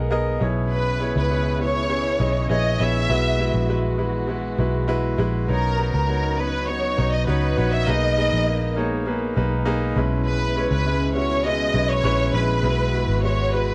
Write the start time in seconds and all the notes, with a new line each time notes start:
Already playing: B1 G#3 B3 D#4 G#4 A#4 D#5 F#5
0.11 B3 G#4 A#4 D#5
0.40 B1 B2 C#3 B3 E4 G#4 C#5
0.72 B4
0.99 B3 E4 G#4 C#5
1.16 C#2 B4
1.29 B3 E4 G#4 C#5
1.59 B3 E4 G#4 C#5
1.89 B3 E4 G#4 C#5
2.19 B1 B3 E4 G#4 D#5
2.49 A#1 B3 E4 G#4 C#5 D#5
2.80 A#1 B3 E4 G#4 C#5 E5
3.08 B1 E3 G#3 B3 E4 F#4 B4
3.39 G#3 E4 F#4 B4
3.54 A#1
3.68 G#3 E4 F#4 B4
3.98 G#3 E4 F#4 B4
4.28 G#3 E4 F#4 B4
4.58 B1 G#3 E4 F#4 B4
4.88 G#3 E4 F#4 B4
5.18 A#1 G#3 E4 F#4 B4
5.48 B1 C#3 F#3 B3 D#4 F#4 A#4 C#5
5.77 B3 D#4 F#4 B4
5.93 C#2 A#4
6.07 B3 D#4 F#4 C#5
6.37 B3 D#4 F#4 B4 C#5
6.67 B3 D#4 F#4 C#5
6.97 B1 B3 D#4 F#4 D#5
7.12 D#5
7.27 C#2 B3 D#4 F#4 B4 C#5
7.56 A#1 B3 D#4 F#4 C#5
7.71 E5
7.86 B1 G#3 A#3 B3 D#4 G#4 A#4 B4 D#5
8.16 A#3 D#4 G#4 B4
8.33 A#1
8.46 A#3 D#4 G#4 B4
8.76 A#3 D#4 G#4 C#5
9.06 A#3 D#4 G#4 B4
9.36 B1 A#3 D#4 G#4 B4
9.65 A#3 D#4 G#4 B4
9.96 B1 B2 C#3 G#3 B3 C#4 E4 B4
10.25 B4
10.56 G#3 C#4 E4 C#5
10.71 C#2 B4
10.85 G#3 C#4 E4 B4
11.14 G#3 C#4 E4 F#4 C#5
11.44 G#3 C#4 E4 B4 D#5
11.74 B1 G#3 C#4 E4 B4
11.90 C#5
12.03 A#1 G#3 C#4 E4 B4
12.33 A#1 G#3 C#4 E4 B4
12.63 B1 B2 E3 G#3 E4 F#4 B4
12.93 G#3 E4 F#4 B4
13.08 G#1
13.23 G#3 E4 F#4 B4 C#5
13.52 G#3 E4 F#4 B4